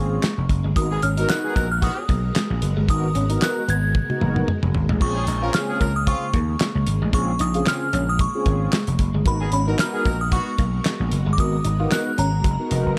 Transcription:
Already playing: G#1 C#3 G#3 A#3 C4 C#4 F4 G#4 C#6
0.23 G#3, snare, clap, closed hi-hat
0.38 F1, muted clean electric guitar stroke
0.49 F#1, kick, closed hi-hat
0.64 G1 G#3
0.76 G#1 B3 D#4 F#4 A#4 D#6, kick, closed hi-hat
0.91 D#3 B3 G#4, muted clean electric guitar stroke
1.02 G#1 C#4 F#4 A#4 F6, closed hi-hat
1.17 F#3 B3 D#4 F#4 A#4, closed hi-hat
1.30 F#6, snare, clap, closed hi-hat
1.44 D#3 B3 G#4
1.55 A#1 F#3 B3 D#4 A#4 F#6, kick, closed hi-hat
1.72 F6
1.82 D#3 B3 F#4 D#6, kick, closed hi-hat
2.09 B1 A#3, kick, closed hi-hat
2.35 G#3, snare, clap, closed hi-hat
2.50 A#1, muted clean electric guitar stroke
2.62 F#1, closed hi-hat
2.77 G1 G#3
2.89 G#1 B3 D#4 F#4 A#4 D#6, kick, closed hi-hat
3.04 muted clean electric guitar stroke
3.15 G#1 C#4, closed hi-hat
3.30 B3 D#4 F#4 A#4, closed hi-hat
3.42 F#6, snare, clap, closed hi-hat
3.68 G#1 B3 G#6, closed hi-hat
3.95 kick, high tom
4.09 A#3 D#4 F#4 A#4, high tom
4.16 B3
4.21 F#1 A#3, mid tom
4.36 mid tom
4.48 G#3, mid tom
4.63 F1, muted clean electric guitar stroke, mid tom
4.74 G#1, floor tom
4.89 A1 G#3, floor tom
5.01 A#1 C#3 A#3 C4 C#4 F4 G#4 C#6, kick, crash
5.15 F3 C#4 G#4, muted clean electric guitar stroke
5.27 A#1 D#4 F4 G#4, closed hi-hat
5.42 F3 C4 C#4 F4 G#4 A#4
5.54 F6, snare, clap, closed hi-hat
5.69 F3 C#4 G#4
5.80 C#2 F3 C#4 A#4 F6, kick, closed hi-hat
5.96 D#6
6.07 C#3 C4 F4 C#6, kick, closed hi-hat
6.33 D#2 A#3, kick, closed hi-hat
6.60 G#3, snare, clap, closed hi-hat
6.75 C#2, muted clean electric guitar stroke
6.87 G#1, closed hi-hat
7.02 A1 G#3
7.13 A#1 C4 C#4 F4 G#4 C#6, kick, closed hi-hat
7.28 muted clean electric guitar stroke
7.39 A#1 D#4 D#6, closed hi-hat
7.54 C4 C#4 F4 G#4, closed hi-hat
7.66 F6, snare, clap, closed hi-hat
7.93 A#1 C#4 F6, closed hi-hat
8.09 D#6
8.19 C#6, kick, closed hi-hat
8.34 C4 C#4 F4 G#4
8.46 G#1 A#3, kick, closed hi-hat
8.73 G#3, snare, clap, closed hi-hat
8.87 F1, muted clean electric guitar stroke, closed hi-hat
8.99 F#1, kick, closed hi-hat
9.14 G1 G#3
9.25 G#1 G#3 B3 D#4 F#4 A#4 B5, kick, closed hi-hat
9.40 D#3 B3 G#4, muted clean electric guitar stroke
9.52 G#1 C#4 F#4 A#4 B5, closed hi-hat
9.67 F#3 B3 D#4 F#4 A#4
9.79 F6, snare, clap, closed hi-hat
9.93 D#3 B3 G#4
10.05 A#1 F#3 B3 D#4 A#4 F6, kick, closed hi-hat
10.21 D#6
10.32 D#3 B3 F#4 C#6, kick, closed hi-hat
10.58 B1 A#3, kick, closed hi-hat
10.85 G#3, snare, clap, closed hi-hat
11.00 A#1, muted clean electric guitar stroke
11.12 F#1, closed hi-hat
11.26 G1 G#3
11.33 D6
11.38 G#1 B3 D#4 F#4 A#4 D#6, kick, closed hi-hat
11.53 muted clean electric guitar stroke
11.64 G#1 D#4, closed hi-hat
11.79 B3 D#4 F4 F#4 A#4
11.92 F#6, snare, clap, closed hi-hat
12.18 G#1 C#4 A#5, closed hi-hat
12.44 F#1, kick, closed hi-hat
12.59 B3 D#4 F#4 A#4
12.71 F1 D#4, closed hi-hat
12.86 F#1

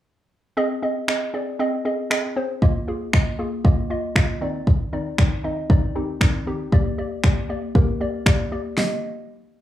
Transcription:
0.57 C4 G#4 D#5
0.82 C4 G#4 D#5
1.08 C4 G#4 D#5, finger snap
1.34 C4 G#4 D5
1.59 C4 G#4 D#5
1.85 C4 G#4 D#5
2.10 C4 G#4 D#5, finger snap
2.36 C4 G#4 C5
2.62 A#3 F4 D#5, kick
2.88 A#3 F4 G#4
3.13 A#3 F4 D#5, finger snap, kick
3.39 A#3 F4 G#4
3.64 A#3 F4 D#5, kick
3.90 A#3 F4 D#5
4.16 A#3 F4 D#5, finger snap, kick
4.41 D#3 C4 D#4 D5
4.67 kick
4.93 D#3 C4 D#4 D5
5.18 D#3 C4 D#4 D5, finger snap, kick
5.44 D#3 C4 D#4 D#5
5.70 D#3 C4 D#4 D5, kick
5.95 D#3 C4 D#4 G4
6.21 D#3 C4 D#4 D5, finger snap, kick
6.47 D#3 C4 D#4 G4
6.72 A#3 G4 D5, kick
6.98 A#3 G4 D5
7.24 A#3 G4 D5, finger snap, kick
7.49 A#3 G4 D5
7.75 A#3 G4 A#4, kick
8.01 A#3 G4 D5
8.26 A#3 G4 D5, finger snap, kick
8.52 A#3 G4 D5
8.78 A#3 G4 D#5, snare, open hi-hat

